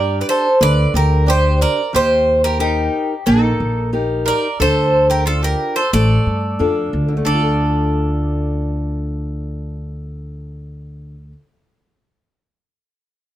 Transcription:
0.00 0.21 G2 medium
0.00 0.47 D4 soft
0.00 0.47 G4 soft
0.00 0.18 A#4 medium
0.00 0.18 D5 medium
0.00 0.47 D5 medium
0.21 0.27 B4 soft
0.21 0.28 D5 medium
0.29 0.60 A4 medium
0.29 0.59 C5 medium
0.61 0.84 D2 medium
0.61 1.25 D3 medium
0.61 0.92 B4 medium
0.61 0.93 D5 loud
0.94 1.64 D2 medium
0.94 1.26 G4 medium
0.94 1.29 A#4 medium
1.26 1.80 D4 medium
1.26 1.80 G4 soft
1.26 1.59 G4 medium
1.26 1.60 C5 medium
1.26 1.80 D5 medium
1.61 1.92 A#4 medium
1.61 1.92 D5 medium
1.93 2.87 D#2 medium
1.93 2.58 D#3 medium
1.93 2.41 G4 medium
1.93 2.41 C5 medium
2.44 2.60 G4 medium
2.44 2.60 A#4 medium
2.59 3.13 D#4 soft
2.59 3.23 D#4 medium
2.59 3.13 G4 soft
2.59 3.26 G4 medium
2.59 3.14 A#4 medium
3.26 3.50 A#1 loud
3.26 3.91 A#3 medium
3.26 3.89 D#4 medium
3.26 3.89 A4 medium
3.60 4.30 A#1 medium
3.93 4.46 D#4 medium
3.93 4.46 G4 medium
3.93 4.47 A#4 medium
4.26 4.57 A#4 medium
4.26 4.61 D5 medium
4.60 5.53 D2 medium
4.60 5.24 D3 medium
4.60 5.06 A4 medium
4.60 5.07 C5 medium
5.10 5.25 G4 medium
5.10 5.26 A#4 medium
5.26 5.80 D4 soft
5.26 5.41 F4 medium
5.26 5.80 F4 soft
5.26 5.44 A4 medium
5.43 5.74 G4 medium
5.43 5.78 A#4 medium
5.76 5.92 A4 medium
5.76 5.92 C5 medium
5.93 6.16 A1 medium
5.93 6.58 A3 medium
5.93 6.89 A4 medium
5.93 6.89 D5 medium
6.26 6.56 G2 medium
6.59 6.90 F2 medium
6.59 7.13 D4 medium
6.59 7.13 F4 soft
6.59 7.13 A4 medium
6.93 7.23 D2 medium
7.08 11.14 D3 soft
7.17 11.22 A3 soft
7.25 11.32 D2 medium
7.25 11.31 D4 soft
7.25 11.31 A4 medium
7.25 11.32 D5 medium
7.34 11.40 F4 soft
7.42 11.46 A4 medium

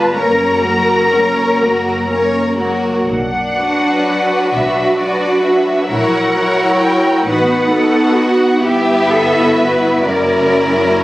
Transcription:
0.00 0.17 G3 soft
0.00 0.17 F4 soft
0.00 0.17 B4 soft
0.00 0.17 A5 medium
0.16 1.44 F#1 medium
0.16 0.61 A#3 soft
0.16 0.61 C#4 soft
0.16 0.61 A#4 soft
0.16 2.34 A#4 medium
0.16 0.61 C#5 soft
0.16 2.54 A#5 medium
0.64 1.13 F#3 soft
0.64 1.12 A#3 soft
0.64 1.13 F#4 soft
0.64 1.12 A#4 soft
1.13 1.59 A#3 soft
1.13 1.61 C#4 soft
1.13 1.60 A#4 soft
1.13 1.61 C#5 soft
1.60 2.90 F#1 soft
1.60 2.09 F#3 soft
1.60 2.08 A#3 soft
1.60 2.10 F#4 soft
1.60 2.08 A#4 soft
2.09 2.55 A#3 soft
2.09 2.55 C#4 soft
2.09 2.55 A#4 soft
2.09 2.55 C#5 soft
2.58 3.08 F#3 soft
2.58 3.08 A#3 soft
2.58 3.08 F#4 soft
2.58 3.08 A#4 soft
3.07 4.34 B1 soft
3.07 4.49 D4 soft
3.07 4.49 F#5 medium
3.57 4.98 F#3 soft
3.57 4.98 D4 soft
3.57 4.98 F#4 soft
3.57 4.97 B4 soft
4.53 5.73 B1 soft
4.53 5.91 F#4 soft
4.53 5.00 E5 medium
4.99 5.89 F#3 soft
4.99 5.89 D4 soft
4.99 5.89 F#4 soft
4.99 5.89 B4 soft
4.99 5.45 D5 medium
5.43 5.88 E5 medium
5.89 7.08 A#1 medium
5.89 6.35 F#3 soft
5.89 6.35 E4 soft
5.89 6.35 F#4 soft
5.89 7.23 A#4 medium
5.89 6.35 C#5 soft
5.89 6.82 F#5 medium
6.36 7.24 F#3 soft
6.36 7.25 E4 soft
6.36 7.24 F#4 soft
6.36 7.24 C#5 soft
6.80 7.25 G5 medium
7.26 8.45 A1 medium
7.26 7.70 B3 soft
7.26 7.70 D#4 soft
7.26 7.70 F#4 soft
7.26 7.71 B4 soft
7.26 7.71 B4 medium
7.26 8.60 F#5 medium
7.71 8.61 B3 soft
7.71 8.61 D#4 soft
7.71 8.61 F#4 soft
7.71 8.17 A4 medium
7.71 8.61 B4 soft
8.19 8.63 F#4 medium
8.62 10.00 G1 medium
8.62 10.00 B3 medium
8.62 10.00 E4 medium
8.62 9.08 G4 medium
8.62 9.28 G4 medium
8.62 10.00 B4 soft
8.62 10.04 E5 medium
9.09 9.56 A4 medium
9.33 10.03 F#4 soft
9.56 10.05 B4 medium
10.03 11.04 F#1 medium
10.03 11.04 F#3 medium
10.03 11.04 C#4 medium
10.03 11.04 E4 soft
10.03 11.04 A#4 medium
10.03 11.02 D5 medium

